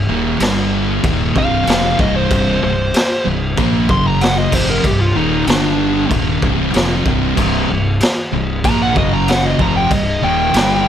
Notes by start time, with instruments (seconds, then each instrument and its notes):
0.08 fingered electric bass D#1, distorted electric guitar D#2 A#2 D#3
0.40 fingered electric bass G1, distorted electric guitar G2 D3 G3, snare, crash
1.03 fingered electric bass D#1, distorted electric guitar D#2 A#2 D#3, kick, crash
1.35 fingered electric bass C1, distorted electric guitar C2 G2 C3, lead electric guitar F5, kick
1.67 fingered electric bass F1, distorted electric guitar F2 C3 F3, snare, crash
1.99 fingered electric bass C1, distorted electric guitar C2 G2 C3, lead electric guitar D#5, kick
2.16 lead electric guitar C5
2.30 fingered electric bass C1, distorted electric guitar C2 G2 C3, kick, crash
2.63 fingered electric bass C1, distorted electric guitar C2 G2, lead electric guitar C5
2.94 snare, crash
3.25 fingered electric bass C1, distorted electric guitar C2 G2
3.57 fingered electric bass A#1, distorted electric guitar A#2 F3 A#3, kick, crash
3.89 fingered electric bass F#1, distorted electric guitar F#2 C#3 F#3, lead electric guitar C6, kick
4.07 lead electric guitar A#5
4.21 lead electric guitar F#5, snare, crash
4.38 lead electric guitar D#5
4.52 fingered electric bass F1, distorted electric guitar F2 C3 F3, lead electric guitar C5, kick, crash
4.70 lead electric guitar A#4
4.83 fingered electric bass C1, distorted electric guitar C2 G2, lead electric guitar G4, kick, crash
5.01 lead electric guitar F4
5.15 fingered electric bass D#1, distorted electric guitar D#2 A#2 D#3, lead electric guitar D#4
5.47 fingered electric bass G1, distorted electric guitar G2 D3 G3, lead electric guitar D4, snare, crash
6.10 fingered electric bass D#1, distorted electric guitar D#2 A#2 D#3, kick, crash
6.42 fingered electric bass C1, distorted electric guitar C2 G2 C3, kick
6.74 fingered electric bass F1, distorted electric guitar F2 C3 F3, snare, crash
7.05 fingered electric bass C1, distorted electric guitar C2 G2 C3, kick
7.37 fingered electric bass C1, distorted electric guitar C2 G2 C3, kick, crash
7.69 fingered electric bass C1, distorted electric guitar C2 G2
8.00 snare, crash
8.32 fingered electric bass C1, distorted electric guitar C2 G2
8.64 fingered electric bass A#1, distorted electric guitar A#2 F3 A#3, lead electric guitar A#5, kick, crash
8.82 lead electric guitar F#5
8.96 fingered electric bass F#1, distorted electric guitar F#2 C#3 F#3, lead electric guitar D#5, kick
9.13 lead electric guitar A#5
9.28 lead electric guitar F#5, snare, crash
9.45 lead electric guitar D#5
9.59 fingered electric bass F1, distorted electric guitar F2 C3 F3, lead electric guitar A#5, kick
9.77 lead electric guitar G5
9.91 fingered electric bass C1, distorted electric guitar C2 G2, lead electric guitar D#5, kick, crash
10.22 fingered electric bass D#1, distorted electric guitar D#2 A#2 D#3, lead electric guitar G5
10.54 fingered electric bass G1, distorted electric guitar G2 D3 G3, snare, crash